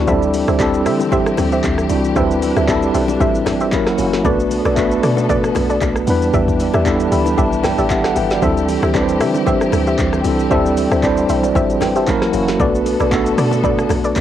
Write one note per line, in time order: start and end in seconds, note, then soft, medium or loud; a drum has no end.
0.06 0.44 D2 loud
0.06 4.21 E3 medium
0.06 0.50 G3 medium
0.06 0.50 C4 medium
0.06 2.14 C4 medium
0.06 0.51 D4 medium
0.06 0.51 E4 medium
0.06 0.44 G4 medium
0.06 3.69 G4 medium
0.06 0.52 A4 loud
0.06 0.44 C5 medium
0.06 0.45 E5 loud
0.06 kick loud
0.06 low conga medium
0.06 shaker medium
0.23 shaker medium
0.34 open hi-hat medium
0.34 low bongo soft
0.34 shaker medium
0.48 0.87 D2 medium
0.48 0.60 G4 medium
0.48 0.60 C5 medium
0.48 0.60 E5 medium
0.48 cross-stick medium
0.48 high bongo medium
0.48 shaker soft
0.59 1.43 G3 medium
0.59 1.44 C4 medium
0.59 1.44 D4 medium
0.59 1.45 E4 medium
0.59 1.45 A4 loud
0.59 kick medium
0.59 clap loud
0.59 high bongo medium
0.59 shaker medium
0.74 shaker medium
0.86 1.33 D3 loud
0.86 1.01 G4 medium
0.86 1.01 C5 medium
0.86 1.01 E5 medium
0.86 cross-stick loud
0.86 open hi-hat medium
0.86 shaker loud
1.00 low bongo medium
1.00 shaker medium
1.12 1.27 G4 loud
1.12 1.27 C5 medium
1.12 1.27 E5 loud
1.12 kick loud
1.12 low bongo medium
1.12 low conga medium
1.12 shaker medium
1.26 cross-stick loud
1.26 shaker medium
1.37 1.61 D2 medium
1.37 cross-stick medium
1.37 open hi-hat medium
1.37 low bongo medium
1.37 low conga medium
1.37 shaker loud
1.52 1.65 G4 medium
1.52 1.65 C5 medium
1.52 1.65 E5 medium
1.52 shaker soft
1.64 1.87 D2 medium
1.64 kick loud
1.64 clap medium
1.64 high bongo medium
1.64 shaker medium
1.78 cross-stick medium
1.78 shaker medium
1.89 2.14 C2 medium
1.89 2.11 G3 medium
1.89 2.11 C4 medium
1.89 2.12 D4 medium
1.89 2.12 E4 medium
1.89 2.13 F#4 medium
1.89 open hi-hat medium
1.89 high bongo medium
1.89 shaker medium
2.04 shaker medium
2.15 2.52 D2 loud
2.15 2.58 G3 medium
2.15 2.59 C4 medium
2.15 3.71 D4 medium
2.15 2.59 D4 medium
2.15 2.60 E4 medium
2.15 2.53 G4 medium
2.15 2.60 B4 medium
2.15 2.53 C5 medium
2.15 2.53 E5 loud
2.15 kick loud
2.15 low conga medium
2.15 shaker medium
2.31 shaker medium
2.42 open hi-hat medium
2.42 low bongo soft
2.42 shaker loud
2.56 2.91 D2 loud
2.56 2.69 G4 medium
2.56 2.69 C5 medium
2.56 2.69 E5 medium
2.56 cross-stick medium
2.56 high bongo medium
2.56 shaker soft
2.67 3.52 G3 medium
2.67 3.52 C4 medium
2.67 3.53 D4 medium
2.67 3.53 E4 medium
2.67 3.54 A4 loud
2.67 kick medium
2.67 clap loud
2.67 high bongo medium
2.67 shaker medium
2.82 shaker medium
2.94 3.18 B1 medium
2.94 3.09 G4 medium
2.94 3.09 C5 medium
2.94 3.09 E5 medium
2.94 open hi-hat medium
2.94 shaker medium
3.08 low bongo medium
3.08 shaker medium
3.20 3.63 A1 loud
3.20 3.35 G4 medium
3.20 3.35 C5 medium
3.20 3.36 E5 loud
3.20 kick loud
3.20 low bongo medium
3.20 low conga medium
3.20 shaker medium
3.35 shaker medium
3.46 cross-stick medium
3.46 snare medium
3.46 open hi-hat medium
3.46 low bongo medium
3.46 low conga medium
3.46 shaker loud
3.61 3.95 G1 loud
3.61 3.73 G4 medium
3.61 3.73 C5 medium
3.61 3.73 E5 medium
3.61 shaker soft
3.72 3.94 F#3 medium
3.72 4.24 A#3 medium
3.72 3.94 A#3 medium
3.72 3.95 C#4 medium
3.72 3.95 E4 medium
3.72 4.24 F#4 medium
3.72 3.96 A#4 loud
3.72 kick loud
3.72 clap medium
3.72 high bongo medium
3.72 shaker medium
3.87 cross-stick loud
3.87 snare medium
3.87 shaker medium
3.98 4.22 F#1 medium
3.98 4.20 F#3 medium
3.98 4.20 A#3 medium
3.98 4.21 C#4 medium
3.98 4.21 E4 medium
3.98 4.22 F#4 medium
3.98 open hi-hat medium
3.98 high bongo medium
3.98 shaker medium
4.13 snare medium
4.13 shaker medium
4.24 4.61 B1 loud
4.24 6.06 D3 medium
4.24 4.67 A3 medium
4.24 4.67 B3 medium
4.24 6.06 B3 medium
4.24 4.32 C4 medium
4.24 4.68 F#4 medium
4.24 4.62 A4 medium
4.24 6.06 A4 medium
4.24 4.62 B4 medium
4.24 4.69 B4 medium
4.24 4.62 D5 loud
4.24 kick loud
4.24 low conga medium
4.24 shaker medium
4.32 4.71 D4 medium
4.40 shaker medium
4.51 open hi-hat medium
4.51 low bongo soft
4.51 shaker medium
4.65 4.99 B1 medium
4.65 4.78 A4 medium
4.65 4.78 B4 medium
4.65 4.78 D5 medium
4.65 cross-stick medium
4.65 high bongo soft
4.65 shaker soft
4.76 5.60 A3 medium
4.76 5.61 B3 medium
4.76 5.61 D4 medium
4.76 5.62 F#4 medium
4.76 5.62 B4 loud
4.76 kick medium
4.76 clap medium
4.76 high bongo medium
4.76 shaker medium
4.91 shaker medium
5.03 5.50 B2 loud
5.03 5.18 A4 medium
5.03 5.18 B4 medium
5.03 5.18 D5 medium
5.03 cross-stick loud
5.03 open hi-hat medium
5.03 shaker medium
5.17 low bongo medium
5.17 shaker medium
5.29 5.44 A4 medium
5.29 5.44 B4 medium
5.29 5.44 D5 loud
5.29 kick loud
5.29 low bongo medium
5.29 low conga medium
5.29 shaker medium
5.44 cross-stick medium
5.44 shaker medium
5.55 5.79 B1 loud
5.55 cross-stick medium
5.55 open hi-hat medium
5.55 low bongo medium
5.55 low conga medium
5.55 shaker loud
5.69 5.82 A4 medium
5.69 5.82 B4 medium
5.69 5.82 D5 medium
5.69 shaker soft
5.81 6.05 B1 medium
5.81 kick medium
5.81 clap medium
5.81 high bongo medium
5.81 shaker medium
5.96 cross-stick medium
5.96 shaker medium
6.06 6.31 E2 loud
6.06 12.56 E3 medium
6.06 6.70 G3 medium
6.06 6.71 B3 medium
6.06 8.40 D4 medium
6.06 6.71 D4 medium
6.06 6.72 E4 medium
6.06 12.03 G4 medium
6.06 6.72 B4 loud
6.06 open hi-hat medium
6.06 high bongo medium
6.06 shaker medium
6.22 shaker medium
6.33 6.70 E2 loud
6.33 6.70 G4 medium
6.33 6.71 D5 medium
6.33 6.71 E5 loud
6.33 kick loud
6.33 low conga medium
6.33 shaker medium
6.48 kick medium
6.48 shaker medium
6.60 open hi-hat medium
6.60 low bongo soft
6.60 shaker medium
6.74 7.08 E2 loud
6.74 6.86 G4 medium
6.74 6.86 D5 medium
6.74 6.87 E5 medium
6.74 cross-stick medium
6.74 high bongo medium
6.74 shaker soft
6.84 7.69 G3 medium
6.84 7.70 B3 medium
6.84 7.70 D4 medium
6.84 7.71 E4 medium
6.84 7.65 A4 medium
6.84 kick medium
6.84 clap loud
6.84 high bongo medium
6.84 shaker medium
7.00 shaker medium
7.11 7.35 D2 loud
7.11 7.27 G4 medium
7.11 7.27 D5 medium
7.11 7.27 E5 medium
7.11 7.36 B5 medium
7.11 open hi-hat medium
7.11 shaker medium
7.26 low bongo medium
7.26 shaker medium
7.38 7.74 B1 loud
7.38 7.53 G4 medium
7.38 7.53 D5 medium
7.38 7.53 E5 loud
7.38 7.62 A5 medium
7.38 kick loud
7.38 low bongo medium
7.38 low conga medium
7.38 shaker medium
7.53 shaker medium
7.63 7.89 G5 medium
7.63 cross-stick medium
7.63 snare medium
7.63 open hi-hat medium
7.63 low bongo medium
7.63 low conga medium
7.63 shaker loud
7.78 8.12 A1 loud
7.78 7.91 G4 medium
7.78 7.91 D5 medium
7.78 7.91 E5 medium
7.78 shaker soft
7.90 8.04 G4 medium
7.90 8.04 E5 medium
7.90 8.04 F#5 medium
7.90 kick loud
7.90 clap medium
7.90 high bongo medium
7.90 shaker medium
8.04 8.16 A4 medium
8.04 8.16 F#5 medium
8.04 cross-stick medium
8.04 snare medium
8.04 shaker medium
8.16 8.40 G1 loud
8.16 8.30 B4 medium
8.16 8.41 E5 medium
8.16 8.30 G5 medium
8.16 open hi-hat medium
8.16 high bongo medium
8.16 shaker medium
8.31 8.56 F#4 medium
8.31 8.56 D5 medium
8.31 snare medium
8.31 shaker medium
8.41 8.79 D2 loud
8.41 8.84 G3 medium
8.41 8.85 C4 medium
8.41 12.04 C4 medium
8.41 8.85 D4 medium
8.41 8.86 E4 medium
8.41 8.79 G4 medium
8.41 8.86 A4 loud
8.41 8.79 C5 medium
8.41 8.79 E5 loud
8.41 kick loud
8.41 low conga medium
8.41 shaker medium
8.57 shaker medium
8.69 open hi-hat medium
8.69 low bongo medium
8.69 shaker medium
8.82 9.22 D2 medium
8.82 8.95 G4 medium
8.82 8.95 C5 medium
8.82 8.95 E5 medium
8.82 cross-stick loud
8.82 high bongo medium
8.82 shaker soft
8.93 9.78 G3 medium
8.93 9.78 C4 medium
8.93 9.79 D4 medium
8.93 9.79 E4 medium
8.93 9.03 B4 medium
8.93 kick medium
8.93 clap loud
8.93 high bongo medium
8.93 shaker medium
9.03 9.83 C5 medium
9.09 shaker medium
9.20 9.67 D3 loud
9.20 9.35 G4 medium
9.20 9.35 C5 medium
9.20 9.36 E5 medium
9.20 cross-stick loud
9.20 open hi-hat medium
9.20 shaker loud
9.35 low bongo medium
9.35 shaker medium
9.46 9.61 G4 loud
9.46 9.62 C5 medium
9.46 9.62 E5 loud
9.46 kick loud
9.46 low bongo medium
9.46 low conga medium
9.46 shaker medium
9.61 cross-stick medium
9.61 shaker medium
9.72 9.96 D2 medium
9.72 cross-stick medium
9.72 open hi-hat medium
9.72 low bongo medium
9.72 low conga medium
9.72 shaker loud
9.87 9.99 G4 medium
9.87 9.99 C5 medium
9.87 10.00 E5 medium
9.87 shaker soft
9.99 10.22 D2 medium
9.99 kick loud
9.99 clap medium
9.99 high bongo medium
9.99 shaker medium
10.13 cross-stick medium
10.13 shaker medium
10.24 10.48 C2 medium
10.24 10.46 G3 medium
10.24 10.46 C4 medium
10.24 10.47 D4 medium
10.24 10.47 E4 medium
10.24 10.48 A4 medium
10.24 open hi-hat medium
10.24 high bongo medium
10.24 shaker medium
10.39 shaker medium
10.50 10.87 D2 loud
10.50 10.93 G3 medium
10.50 10.94 C4 medium
10.50 10.94 D4 medium
10.50 10.95 E4 medium
10.50 10.88 G4 medium
10.50 10.88 C5 medium
10.50 10.88 E5 loud
10.50 kick loud
10.50 low conga medium
10.50 shaker medium
10.54 10.95 A4 loud
10.66 shaker medium
10.77 open hi-hat medium
10.77 low bongo soft
10.77 shaker medium
10.91 11.25 D2 medium
10.91 11.04 G4 medium
10.91 11.04 C5 medium
10.91 11.04 E5 medium
10.91 cross-stick medium
10.91 high bongo medium
10.91 shaker soft
11.02 11.87 G3 medium
11.02 11.87 C4 medium
11.02 11.88 D4 medium
11.02 11.88 E4 medium
11.02 11.31 C5 loud
11.02 kick medium
11.02 clap medium
11.02 high bongo medium
11.02 shaker medium
11.17 shaker medium
11.29 11.53 B1 medium
11.29 11.44 G4 medium
11.29 11.44 C5 medium
11.29 11.44 E5 medium
11.29 open hi-hat medium
11.29 shaker loud
11.43 11.56 F#4 medium
11.43 11.55 D5 medium
11.43 low bongo medium
11.43 shaker medium
11.55 11.97 A1 medium
11.55 11.70 G4 loud
11.55 11.81 G4 medium
11.55 11.70 C5 medium
11.55 11.70 E5 loud
11.55 11.81 E5 medium
11.55 kick loud
11.55 low bongo medium
11.55 low conga medium
11.55 shaker medium
11.70 shaker medium
11.81 11.96 B4 medium
11.81 11.95 G5 medium
11.81 cross-stick medium
11.81 snare medium
11.81 open hi-hat medium
11.81 low bongo medium
11.81 low conga medium
11.81 shaker loud
11.95 12.30 G1 loud
11.95 12.08 G4 medium
11.95 12.08 C5 medium
11.95 12.21 C5 medium
11.95 12.08 E5 medium
11.95 12.21 A5 medium
11.95 shaker soft
12.06 12.28 F#3 medium
12.06 12.29 A#3 medium
12.06 12.59 A#3 medium
12.06 12.29 C#4 medium
12.06 12.30 E4 medium
12.06 12.59 F#4 medium
12.06 12.30 A#4 loud
12.06 kick loud
12.06 clap medium
12.06 high bongo medium
12.06 shaker medium
12.22 cross-stick medium
12.22 snare medium
12.22 shaker medium
12.32 12.57 F#1 loud
12.32 12.54 F#3 medium
12.32 12.55 A#3 medium
12.32 12.55 C#4 medium
12.32 12.56 E4 medium
12.32 12.56 F#4 medium
12.32 open hi-hat medium
12.32 high bongo medium
12.32 shaker medium
12.48 snare medium
12.48 shaker medium
12.59 12.96 B1 loud
12.59 14.21 D3 medium
12.59 13.02 A3 medium
12.59 13.02 B3 medium
12.59 14.21 B3 medium
12.59 13.03 D4 medium
12.59 13.03 F#4 medium
12.59 12.97 A4 loud
12.59 14.21 A4 medium
12.59 12.97 B4 medium
12.59 13.04 B4 medium
12.59 12.97 D5 loud
12.59 kick loud
12.59 low conga medium
12.59 shaker medium
12.75 shaker medium
12.86 open hi-hat medium
12.86 low bongo soft
12.86 shaker medium
13.00 13.34 B1 medium
13.00 13.12 A4 medium
13.00 13.12 B4 medium
13.00 13.13 D5 medium
13.00 cross-stick medium
13.00 high bongo medium
13.00 shaker soft
13.11 13.95 A3 medium
13.11 13.96 B3 medium
13.11 13.96 D4 medium
13.11 13.97 F#4 medium
13.11 kick medium
13.11 clap medium
13.11 high bongo medium
13.11 shaker medium
13.15 13.97 A4 loud
13.26 shaker medium
13.38 13.85 B2 loud
13.38 13.53 A4 medium
13.38 13.53 B4 medium
13.38 13.53 D5 medium
13.38 cross-stick loud
13.38 open hi-hat medium
13.38 shaker loud
13.51 low bongo medium
13.51 shaker medium
13.64 13.79 A4 loud
13.64 13.79 B4 medium
13.64 13.79 D5 loud
13.64 kick loud
13.64 low bongo medium
13.64 low conga medium
13.64 shaker medium
13.79 cross-stick loud
13.79 shaker medium
13.89 14.14 B1 medium
13.89 cross-stick medium
13.89 open hi-hat medium
13.89 low bongo medium
13.89 low conga medium
13.89 shaker loud
14.04 14.17 A4 medium
14.04 14.17 B4 medium
14.04 14.17 D5 medium
14.04 shaker soft
14.16 14.21 B1 medium
14.16 kick loud
14.16 clap medium
14.16 high bongo medium
14.16 shaker medium